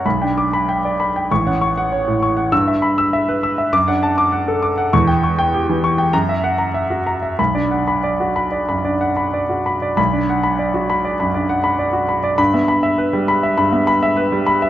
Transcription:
<<
  \new Staff \with { instrumentName = "Grand piano" } { \time 4/4 \key b \minor \tempo 4 = 99 << { r8 d'''8 r4 cis'''8 r4. | e'''8 r4. d'''8 r4. | cis'''8 r4. ais''8 r4. | b''8 r2. r8 |
b''8 r2. r8 | b''8 r2. r8 | } \\ { b''16 g''8 b''16 g''16 d''16 b''16 g''16 r16 fis''16 cis'''16 fis''16 cis''16 a,16 cis'''16 fis''16 | r16 e''16 b''16 e'''16 e''16 b'16 e'''16 e''16 r16 fis''16 a''16 d'''16 fis''16 a'16 d'''16 fis''16 | r16 g''16 cis'''16 g''16 g'16 e16 cis'''16 g''16 r16 e''16 fis''16 ais''16 e''16 fis'16 ais''16 e''16 | r16 d''16 fis''16 b''16 d''16 fis'16 b''16 d''16 b''16 d''16 fis''16 b''16 d''16 fis'16 b''16 d''16 |
r16 d''16 fis''16 b''16 d''16 fis'16 b''16 d''16 b''16 d''16 fis''16 b''16 d''16 fis'16 b''16 d''16 | r16 e''16 b''16 e''16 b'16 g16 b''16 e''16 b''16 e''16 b''16 e''16 b'16 g16 b''16 e''16 | } >> }
  \new Staff \with { instrumentName = "Grand piano" } { \clef bass \time 4/4 \key b \minor b,,16 d'8 r4 r16 a,,16 cis'8 r4 r16 | g,2 fis,16 d'8 r4 r16 | e,2 fis,2 | b,,16 d'8 r4 r16 fis,16 d'8 r4 r16 |
b,,16 d'8 r4 r16 fis,16 d'8 r4 r16 | g,16 b8 r4 r16 g,16 b8 r4 r16 | }
>>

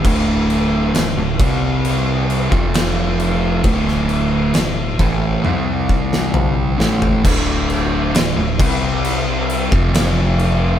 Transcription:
<<
  \new Staff \with { instrumentName = "Distorted electric guitar" } { \clef bass \time 4/4 \key d \minor \tempo 4 = 67 <d, a, d>4 <d, a,>16 <d, a,>16 <c g c'>4~ <c g c'>16 <f, c f>4~ <f, c f>16 | <d, a, d>4 <d, a,>8 <a, e a>8 <c g c'>4. <a, e a>8 | <d, a, d>4 <d, a,>16 <d, a,>16 <c g c'>4~ <c g c'>16 <f, c f>4~ <f, c f>16 | }
  \new Staff \with { instrumentName = "Picked electric bass" } { \clef bass \time 4/4 \key d \minor d,,4 d,,16 d,,16 c,4~ c,16 f,,4~ f,,16 | d,,4 d,,8 a,,8 c,4. a,,8 | d,,4 d,,16 d,,16 c,4~ c,16 f,,4~ f,,16 | }
  \new DrumStaff \with { instrumentName = "Drums" } \drummode { \time 4/4 <cymc bd>8 cymc8 <cymc sn>8 <cymc bd>8 cymc8 cymc16 bd16 <cymc sn>8 cymc8 | <cymc bd>16 sn16 cymc8 <cymc sn>8 <cymc bd>8 tommh8 bd16 sn16 toml8 sn16 tomfh16 | <cymc bd>8 cymc8 <cymc sn>8 <cymc bd>8 cymc8 cymc16 bd16 <cymc sn>8 cymc8 | }
>>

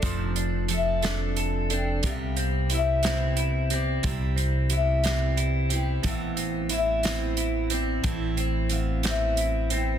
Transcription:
<<
  \new Staff \with { instrumentName = "Harp" } { \time 6/8 \key c \major \tempo 4. = 60 c''4 e''8 d''4 g''8 | f''4 e''4. d''8 | c''4 e''8 d''4 g''8 | f''4 e''4. d''8 |
c''4 f''8 e''4 g''8 | }
  \new Staff \with { instrumentName = "Clean electric guitar" } { \time 6/8 \key c \major <f d' a'>8 d'8 a'8 d'8 a'8 d'8 | c8 c'8 e'8 c'8 e'8 c'8 | c8 c'8 e'8 c'8 e'8 c'8 | a,8 c'8 e'8 c'8 e'8 c'8 |
a,8 c'4 c'8 e'8 c'8 | }
  \new Staff \with { instrumentName = "Steel-string acoustic guitar" } { \time 6/8 \key c \major <f c' d' a'>4 <f c' d' a'>8 <f c' d' a'>4 <c' d' a'>8 | <c g b g'>4 <g b e' g'>8 <c g b e' g'>4 <b e' g'>8 | <c g e' g'>4 <g b e' g'>8 <c g b e' g'>4 <b e' g'>8 | <a, e b c'>4 <e b c' e'>8 <a, e b c' e'>4 <b c' e'>8 |
<a, e c' e'>4 <e b c'>8 <a, e b c' e'>4 <b c' e'>8 | }
  \new Staff \with { instrumentName = "Upright bass" } { \clef bass \time 6/8 \key c \major f,,2. | c,2. | c,2. | a,,2. |
a,,2. | }
  \new DrumStaff \with { instrumentName = "Drums" } \drummode { \time 6/8 <hh bd>8 hh8 hh8 <hh sn>8 hh8 hh8 | <hh bd>8 hh8 hh8 <hh sn>8 hh8 hh8 | <hh bd>8 hh8 hh8 <hh sn>8 hh8 hh8 | <hh bd>8 hh8 hh8 <hh sn>8 hh8 hh8 |
<hh bd>8 hh8 hh8 <hh sn>8 hh8 hh8 | }
>>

